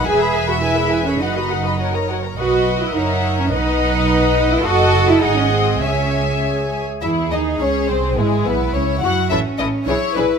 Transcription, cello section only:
X:1
M:2/4
L:1/16
Q:1/4=105
K:B
V:1 name="Cello section"
G3 F E3 C | D6 z2 | F3 E D3 C | D6- D E |
[K:C#m] F3 E D C ^B,2 | C4 z4 | G8 | E8 |
C4 E4 |]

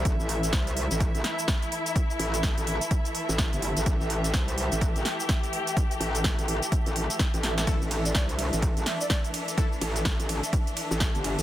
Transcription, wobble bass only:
X:1
M:4/4
L:1/16
Q:"Swing 16ths" 1/4=126
K:Am
V:1 name="Wobble bass" clef=bass
A,,, A,,,3 C,,3 A,,,2 A,,, z6 | z2 A,,,3 A,,,2 z4 A,,,2 G,,,2 A,,, | A,,, A,,,3 C,,3 A,,,2 A,,, z6 | z2 A,,,3 A,,,2 z2 A,,,2 z2 A,,,3 |
A,,, A,,,3 C,,3 A,,,2 A,,, z6 | z2 A,,,3 A,,,2 z4 A,,,2 G,,,2 A,,, |]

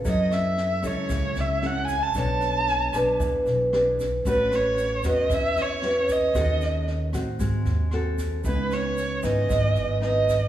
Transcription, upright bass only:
X:1
M:4/4
L:1/8
Q:1/4=114
K:C#m
V:1 name="Upright bass" clef=bass
F,,3 C,, C,, C,,3 | B,,,3 B,,, E,, B,,,3 | A,,,3 E,, E,, E,,3 | D,,3 A,, G,,, D,,3 |
C,,3 G,,, G,,, G,,,3 |]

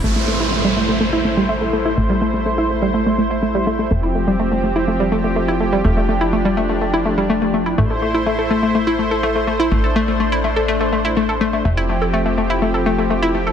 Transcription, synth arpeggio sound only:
X:1
M:4/4
L:1/16
Q:1/4=124
K:Am
V:1 name="Synth arpeggio sound"
A, A, A, E A, G, A, A, A, E A, G, A, A, A, E | A, G, A, A, A, E A, G, A, A, A, E A, G, A, A, | A, E A, G, A, A, A, E A, G, A, A, A, E A, G, | A, A, A, E A, G, A, A, A, E A, G, A, A, A, E |
A, A, A, E A, A A, A, A, E A, A A, A, A, E | A, A A, A, A, E A, A A, A, A, E A, A A, A, | A, E A, A A, A, A, E A, A A, A, A, E A, A |]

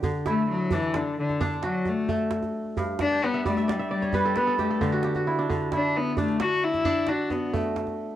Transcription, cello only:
X:1
M:12/8
L:1/8
Q:3/8=88
K:D
V:1 name="Cello"
z A, F, E, D, D,2 F, A, z3 | z D B, A, G, G,2 B, A, z3 | z D B, A, F E2 D B, z3 |]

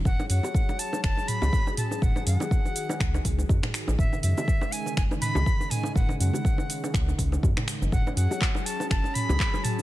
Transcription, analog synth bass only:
X:1
M:4/4
L:1/16
Q:"Swing 16ths" 1/4=122
K:F#dor
V:1 name="Analog synth bass" clef=bass
F,,, z F,, z4 z F,,, z2 C,, z4 | F,,, z F,, z4 z C,,2 C,,2 F,, z2 A,,, | F,,, z F,, z4 z F,,, z2 C,, z4 | F,,, z F,, z4 z C,,2 C,,2 F,, z2 F,,, |
F,,, z F,, z4 z F,,, z2 C,, z4 |]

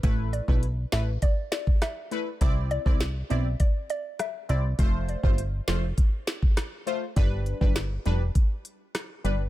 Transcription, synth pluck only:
X:1
M:4/4
L:1/16
Q:1/4=101
K:Am
V:1 name="Synth pluck"
z2 d z3 e2 d z d z e3 z | z2 d z3 e2 d z d z e z d z | z16 | z16 |]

